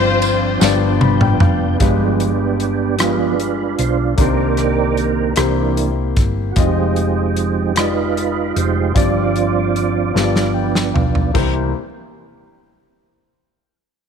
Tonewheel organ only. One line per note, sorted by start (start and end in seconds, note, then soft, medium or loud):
0.00 1.76 F3 medium
0.00 0.61 C4 medium
0.00 1.78 D4 medium
0.00 1.77 G5 medium
0.62 1.79 B3 medium
1.80 2.33 F3 soft
1.80 2.33 G#3 soft
1.80 2.96 B3 soft
1.80 2.96 D4 soft
1.80 3.03 G4 medium
2.99 3.35 F3 soft
2.99 3.35 G#3 soft
2.99 3.35 B3 soft
2.99 4.15 D4 medium
2.99 4.15 F4 medium
2.99 3.75 B4 medium
3.80 3.97 C5 medium
4.18 5.33 D#3 soft
4.18 5.34 A#3 soft
4.18 5.34 C4 soft
4.18 5.34 G4 medium
4.18 5.34 A#4 medium
4.18 5.04 D5 medium
5.38 5.91 E3 soft
5.38 5.90 A#3 soft
5.38 5.91 D4 medium
6.51 6.58 F#4 soft
6.58 7.73 F3 soft
6.58 7.73 G#3 soft
6.58 7.73 C4 soft
6.58 7.74 D#4 soft
6.58 7.81 G4 medium
7.77 8.57 D#4 medium
7.77 8.92 F4 medium
7.77 8.53 B4 medium
8.56 8.92 G#3 soft
8.56 8.93 D#4 soft
8.56 8.92 G4 soft
8.56 8.94 C5 medium
8.96 10.11 F3 soft
8.96 10.12 C4 soft
8.96 10.12 D4 soft
8.96 10.52 F4 soft
8.96 10.52 D5 medium
10.15 11.31 F3 soft
10.15 11.31 B3 soft
10.15 11.32 D4 medium
11.35 11.72 E3 soft
11.35 11.72 A#3 soft
11.35 11.72 C4 soft
11.35 11.72 G4 medium